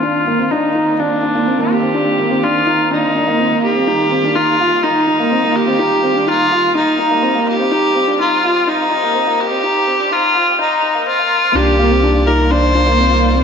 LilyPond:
<<
  \new Staff \with { instrumentName = "Viola" } { \time 4/4 \key c \minor \tempo 4 = 125 f'4 ees'4 d'4. g'8~ | g'4 f'4 ees'4. g'8~ | g'4 f'4 ees'4. g'8~ | g'4 f'4 ees'4. g'8~ |
g'4 f'4 ees'4. g'8~ | g'4 f'4 ees'4 f'4 | g'4. bes'8 c''2 | }
  \new Staff \with { instrumentName = "Felt piano" } { \time 4/4 \key c \minor d'8 bes16 c'16 d'8 ees'8 d'8 d'16 bes16 c'16 bes8 c'16 | d'8 bes16 c'16 d'8 ees'8 d'8 d'16 bes16 c'16 bes8 c'16 | ees'8 c'16 d'16 ees'8 f'8 ees'8 ees'16 bes16 c'16 bes8 c'16 | ees'8 c'16 d'16 ees'8 f'8 ees'8 ees'16 bes16 c'16 bes8 c'16 |
ees'8 c'16 d'16 ees'8 f'8 ees'8 ees'16 bes16 c'16 bes8 c'16 | ees'8 c'16 d'16 ees'8 f'8 ees'8 ees'16 bes16 c'16 bes8 c'16 | d'8 bes16 c'16 d'8 ees'8 d'8 d'16 bes16 c'16 bes8 c'16 | }
  \new Staff \with { instrumentName = "String section" } { \time 4/4 \key c \minor << { <bes c'>1~ | <bes c'>1 | g1~ | g1 |
c'1~ | c'1 | <bes d''>1 | } \\ { <ees f'>1~ | <ees f'>1~ | <ees f'>1~ | <ees f'>1~ |
<ees f'>1~ | <ees f'>1 | <ees f'>1 | } >> }
  \new Staff \with { instrumentName = "Sub bass" } { \clef bass \time 4/4 \key c \minor c,1~ | c,1 | c,1~ | c,1~ |
c,1~ | c,1 | c,1 | }
>>